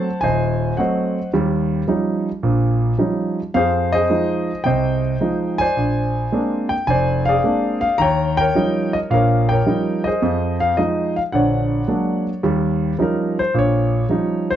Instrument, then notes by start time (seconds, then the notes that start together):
grand piano
Already playing: C5 F#5 A5
0.21 D#1 C5 D#5 G#5
0.77 F#3 A3 C4 C5 D#5 F#5
1.34 D#2 G3
1.88 F3 G3 C#4 D#4
2.43 A#1 A#2
2.98 F3 G3 C#4 D#4
3.54 F2 G#4 C5 F5
3.92 G#4 C5 D#5
4.10 F3 G#3 D#4
4.64 C2 C3 C5 D#5 G5
5.21 F3 G#3 D#4
5.58 C5 D5 G#5
5.77 A#1
6.32 G#3 A#3 C4 D4
6.69 G5
6.87 F1 C5 D5 G#5
7.25 G#4 D5 F5
7.44 G#3 A#3 C4 D4
7.81 F5
7.98 D#2 C#5 G5 A#5
8.37 A#4 C#5 G5
8.55 F3 G3 C#4 D#4
8.93 D#5
9.10 A#1 A#2 A#4 C#5 F5
9.49 A#4 C#5 G5
9.66 F3 G3 C#4 D#4
10.04 G#4 C5 D#5
10.22 F2
10.60 F5
10.77 F3 G#3 D#4 D#5
11.16 F5
11.32 A#1 D3 C#5 D5 F#5
11.88 F#3 G#3 A#3 D4
12.43 D#2 G3
12.99 F3 G3 C#4 D#4 A#4
13.39 C5
13.54 A#1 A#2
13.59 C#5
14.09 F3 G3 C#4 D#4
14.51 C5